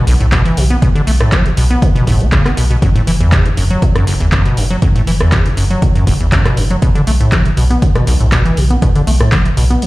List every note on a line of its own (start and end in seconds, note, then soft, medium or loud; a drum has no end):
0.07 0.14 B1 loud
0.07 0.17 B1 medium
0.07 open hi-hat loud
0.20 0.39 B1 loud
0.20 0.27 A2 medium
0.20 closed hi-hat soft
0.32 0.43 B2 loud
0.32 kick loud
0.32 clap loud
0.32 closed hi-hat medium
0.45 0.59 E3 medium
0.45 closed hi-hat soft
0.57 0.77 B1 medium
0.57 0.64 B2 medium
0.57 open hi-hat loud
0.70 0.77 B3 medium
0.70 closed hi-hat soft
0.82 0.89 B2 loud
0.82 kick loud
0.82 closed hi-hat medium
0.95 1.02 D3 loud
0.95 closed hi-hat soft
1.07 1.27 B1 loud
1.07 1.12 A3 medium
1.07 open hi-hat loud
1.20 1.34 A2 medium
1.20 cross-stick medium
1.20 closed hi-hat soft
1.32 1.47 F#3 medium
1.32 kick loud
1.32 clap loud
1.32 closed hi-hat medium
1.45 1.49 A2 medium
1.45 closed hi-hat soft
1.57 1.77 B1 loud
1.57 1.65 B2 medium
1.57 open hi-hat loud
1.70 1.84 B3 medium
1.70 closed hi-hat soft
1.82 1.90 D3 medium
1.82 kick loud
1.82 closed hi-hat medium
1.96 2.05 B2 loud
1.96 closed hi-hat soft
2.07 2.17 B1 medium
2.07 2.22 A2 loud
2.07 kick medium
2.07 open hi-hat loud
2.20 2.40 B1 loud
2.20 2.27 B3 medium
2.20 closed hi-hat soft
2.32 2.43 C#3 medium
2.32 kick loud
2.32 clap loud
2.32 closed hi-hat medium
2.45 2.52 B3 medium
2.45 cross-stick medium
2.45 clap soft
2.45 closed hi-hat soft
2.57 2.77 B1 medium
2.57 2.65 B2 medium
2.57 open hi-hat loud
2.70 2.77 B2 medium
2.70 closed hi-hat soft
2.82 2.90 F#2 loud
2.82 kick loud
2.82 closed hi-hat medium
2.96 3.02 A2 loud
2.96 closed hi-hat soft
3.07 3.27 F#1 loud
3.07 3.12 E3 medium
3.07 open hi-hat loud
3.21 3.34 E2 medium
3.21 closed hi-hat soft
3.32 3.47 C#3 medium
3.32 kick loud
3.32 clap loud
3.32 closed hi-hat medium
3.46 3.49 E2 medium
3.46 closed hi-hat soft
3.57 3.77 F#1 loud
3.57 3.65 F#2 medium
3.57 open hi-hat loud
3.70 3.84 F#3 medium
3.70 closed hi-hat soft
3.82 3.90 A2 medium
3.82 kick loud
3.82 closed hi-hat medium
3.95 4.05 F#2 loud
3.95 cross-stick medium
3.95 closed hi-hat soft
4.07 4.15 F#1 loud
4.07 4.18 F#1 medium
4.07 open hi-hat loud
4.20 4.39 F#1 medium
4.20 4.27 E2 medium
4.20 closed hi-hat soft
4.32 4.43 F#2 loud
4.32 kick loud
4.32 clap loud
4.32 closed hi-hat medium
4.45 4.59 B2 medium
4.45 closed hi-hat soft
4.57 4.77 F#1 medium
4.57 4.65 F#2 medium
4.57 open hi-hat loud
4.71 4.77 F#3 medium
4.71 closed hi-hat soft
4.82 4.90 F#2 loud
4.82 kick loud
4.82 closed hi-hat medium
4.96 5.02 A2 loud
4.96 closed hi-hat soft
5.07 5.27 F#1 medium
5.07 5.12 E3 medium
5.07 open hi-hat loud
5.20 5.34 E2 medium
5.20 cross-stick medium
5.20 closed hi-hat soft
5.32 5.47 C#3 medium
5.32 kick loud
5.32 clap loud
5.32 closed hi-hat medium
5.46 5.49 E2 medium
5.46 closed hi-hat soft
5.57 5.77 F#1 loud
5.57 5.64 F#2 medium
5.57 open hi-hat loud
5.70 5.84 F#3 medium
5.70 closed hi-hat soft
5.82 5.90 A2 medium
5.82 kick loud
5.82 closed hi-hat medium
5.95 6.05 F#2 loud
5.95 closed hi-hat soft
6.07 6.14 F#1 loud
6.07 6.17 F#1 medium
6.07 kick medium
6.07 open hi-hat loud
6.20 6.39 F#1 medium
6.20 6.27 E2 medium
6.20 closed hi-hat soft
6.32 6.43 F#2 loud
6.32 kick loud
6.32 clap loud
6.32 closed hi-hat medium
6.45 6.59 B2 medium
6.45 cross-stick medium
6.45 clap soft
6.45 closed hi-hat soft
6.57 6.77 F#1 medium
6.57 6.64 F#2 medium
6.57 open hi-hat loud
6.70 6.77 F#3 medium
6.70 closed hi-hat soft
6.82 6.89 B2 loud
6.82 kick loud
6.82 closed hi-hat medium
6.95 7.02 D3 loud
6.95 closed hi-hat soft
7.07 7.27 B1 loud
7.07 7.12 A3 medium
7.07 open hi-hat loud
7.20 7.34 A2 medium
7.20 closed hi-hat soft
7.32 7.47 F#3 medium
7.32 kick loud
7.32 clap loud
7.32 closed hi-hat loud
7.45 7.49 A2 medium
7.45 closed hi-hat soft
7.57 7.77 B1 loud
7.57 7.64 B2 medium
7.57 open hi-hat loud
7.70 7.84 B3 medium
7.70 closed hi-hat soft
7.82 7.89 D3 medium
7.82 kick loud
7.82 closed hi-hat loud
7.95 8.05 B2 loud
7.95 cross-stick medium
7.95 closed hi-hat soft
8.07 8.14 B1 loud
8.07 8.17 B1 medium
8.07 open hi-hat loud
8.20 8.39 B1 loud
8.20 8.27 A2 medium
8.20 closed hi-hat soft
8.32 8.43 B2 loud
8.32 kick loud
8.32 clap loud
8.32 closed hi-hat loud
8.45 8.59 E3 medium
8.45 closed hi-hat soft
8.57 8.77 B1 medium
8.57 8.64 B2 medium
8.57 open hi-hat loud
8.70 8.77 B3 medium
8.70 closed hi-hat soft
8.82 8.89 B2 loud
8.82 kick loud
8.82 closed hi-hat medium
8.96 9.02 D3 loud
8.96 closed hi-hat soft
9.07 9.27 B1 loud
9.07 9.12 A3 medium
9.07 open hi-hat loud
9.20 9.34 A2 medium
9.20 cross-stick medium
9.32 9.47 F#3 medium
9.32 kick loud
9.32 clap loud
9.32 closed hi-hat loud
9.45 9.49 A2 medium
9.45 closed hi-hat soft
9.57 9.77 B1 loud
9.57 9.64 B2 medium
9.57 open hi-hat loud
9.70 9.84 B3 medium
9.70 closed hi-hat soft
9.82 9.87 D3 medium
9.82 closed hi-hat medium